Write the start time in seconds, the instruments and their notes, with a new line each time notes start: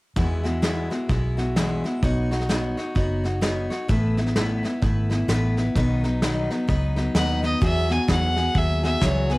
0.16 fingered electric bass E2, steel-string acoustic guitar E2 E3 G#3 B3 E4 F#4, kick, snare
0.43 steel-string acoustic guitar G#3 B3 E4 F#4, snare
0.62 steel-string acoustic guitar E2 E3 G#3 B3 E4 F#4, snare, hi-hat pedal
0.90 steel-string acoustic guitar G#3 B3 E4 F#4, snare
1.09 fingered electric bass B1, steel-string acoustic guitar G#3 B3 E4 F#4, kick, snare
1.37 steel-string acoustic guitar G#3 B3 E4 F#4, snare
1.56 steel-string acoustic guitar E2 E3 G#3 B3 E4 F#4, snare, hi-hat pedal
1.84 steel-string acoustic guitar G#3 B3 E4 F#4, snare
2.03 fingered electric bass B1, steel-string acoustic guitar B3 D#4 F#4 C#5, kick, snare
2.31 steel-string acoustic guitar D#4 F#4 C#5, snare
2.41 snare
2.49 steel-string acoustic guitar B3 D#4 F#4 C#5, snare, hi-hat pedal
2.77 steel-string acoustic guitar D#4 F#4 C#5, snare
2.95 fingered electric bass F#1, steel-string acoustic guitar B3 D#4 F#4 C#5, kick, snare
3.24 steel-string acoustic guitar D#4 F#4 C#5, snare
3.41 steel-string acoustic guitar B3 D#4 F#4 C#5, snare, hi-hat pedal
3.70 steel-string acoustic guitar D#4 F#4 C#5, snare
3.88 fingered electric bass A1, steel-string acoustic guitar A2 A3 B3 E4 B4, kick, snare
4.17 steel-string acoustic guitar B3 E4 B4, snare
4.26 snare
4.36 steel-string acoustic guitar A2 A3 B3 E4 B4, snare, hi-hat pedal
4.63 steel-string acoustic guitar B3 E4 B4, snare
4.82 fingered electric bass G#1, steel-string acoustic guitar A3 B3 E4 B4, kick, snare
5.10 steel-string acoustic guitar B3 E4 B4, snare
5.28 fingered electric bass A1, steel-string acoustic guitar A2 A3 B3 E4 B4, snare, hi-hat pedal
5.57 steel-string acoustic guitar B3 E4 B4, snare
5.75 fingered electric bass B1, steel-string acoustic guitar B2 D#3 F#3 B3 D#4 B4, kick, snare
6.04 steel-string acoustic guitar F#3 B3 D#4 B4, snare
6.22 steel-string acoustic guitar B2 D#3 F#3 B3 D#4 B4, snare, hi-hat pedal
6.50 steel-string acoustic guitar F#3 B3 D#4 B4, snare
6.68 fingered electric bass C#2, steel-string acoustic guitar F#3 B3 D#4 B4, kick, snare
6.96 steel-string acoustic guitar F#3 B3 D#4 B4, snare
7.15 fingered electric bass D#2, steel-string acoustic guitar B2 D#3 F#3 B3 D#4 B4, fiddle F#5, snare, hi-hat pedal
7.42 steel-string acoustic guitar F#3 B3 D#4 B4, fiddle D#5, snare
7.61 steel-string acoustic guitar E2 E3 F#3 B3 F#4 G#4, fingered electric bass E2, fiddle E5, kick, snare
7.89 steel-string acoustic guitar F#3 B3 F#4 G#4, fiddle G#5, snare
8.08 steel-string acoustic guitar E2 E3 F#3 B3 F#4 G#4, fingered electric bass E2, fiddle F#5, kick, snare, hi-hat pedal
8.36 steel-string acoustic guitar F#3 B3 F#4 G#4, snare
8.54 fingered electric bass D#2, steel-string acoustic guitar F#3 B3 F#4 G#4, fiddle E5, kick, snare
8.83 steel-string acoustic guitar F#3 B3 F#4 G#4, fiddle E5, snare
9.01 fingered electric bass C#2, steel-string acoustic guitar E2 E3 F#3 B3 F#4 G#4, fiddle C#5, kick, snare, hi-hat pedal
9.30 steel-string acoustic guitar F#3 B3 F#4 G#4, fiddle B4, snare